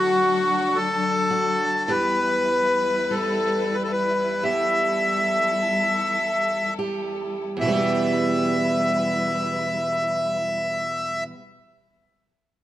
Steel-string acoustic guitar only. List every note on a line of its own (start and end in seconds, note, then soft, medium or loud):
0.00 1.99 D3 medium
0.00 1.92 A3 medium
1.30 1.88 F#4 medium
1.88 7.55 E2 medium
1.88 4.45 G4 medium
3.11 4.43 G3 medium
4.43 7.68 G3 soft
4.43 7.71 B3 soft
4.43 6.78 G4 soft
6.79 7.75 G4 soft
7.57 11.24 E2 medium
7.61 11.29 B2 medium
7.61 11.32 E3 medium
7.68 11.35 G3 medium
7.68 11.39 B3 medium
7.75 11.43 G4 medium